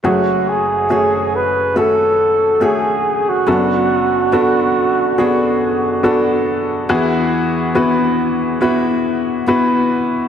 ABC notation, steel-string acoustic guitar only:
X:1
M:4/4
L:1/8
Q:1/4=70
K:F#m
V:1 name="Steel-string acoustic guitar"
[F,,F]2 [CFG]2 [CF]2 [CFG]2 | [F,,F]2 [DFA]2 [DFA]2 [DFA]2 | [E,F]2 [B,EF]2 [B,EF]2 [B,EF]2 |]